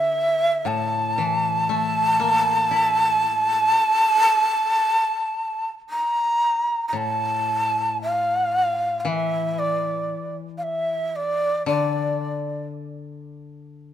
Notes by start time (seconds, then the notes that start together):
Already playing: D3 E5
0.65 A2 A5
1.18 E3
1.69 A3
2.20 A#3
2.71 E4
5.90 A#5
6.88 A#5
6.93 A2
6.97 A5
8.02 F5
9.00 F5
9.05 E3 E5
9.59 D5
10.58 F5
10.63 E5
11.16 D5
11.66 D3 D5